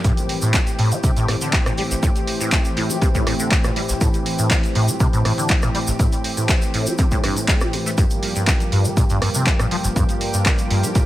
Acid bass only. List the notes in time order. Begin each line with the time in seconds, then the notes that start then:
0.04 A2
0.42 A2
0.54 A3
0.79 A2
0.92 G3
1.04 C3
1.17 A2
1.28 A2
1.41 D3
1.53 A3
1.66 A#2
1.78 G3
1.91 A1
2.03 A2
2.40 A2
2.52 A3
2.77 A2
2.90 G3
3.02 C3
3.15 A2
3.27 A2
3.39 D3
3.51 A3
3.64 A#2
3.76 G3
3.89 A1
4.01 A2
4.39 A2
4.51 A3
4.76 A2
4.89 G3
5.00 C3
5.13 A2
5.25 A2
5.38 D3
5.50 A3
5.63 A#2
5.75 G3
5.88 A1
5.99 A2
6.37 A2
6.49 A3
6.74 A2
6.87 G3
6.99 C3
7.12 A2
7.24 G2
7.36 A2
7.48 A3
7.61 E3
7.73 A2
7.86 A3
7.98 G2
8.36 G2
8.47 G3
8.72 G2
8.85 F3
8.97 A#2
9.10 G2
9.22 G2
9.35 C3
9.47 G3
9.60 A2
9.71 F3
9.84 G1
9.96 G2
10.34 G2
10.46 G3
10.71 G2
10.84 F3
10.95 A#2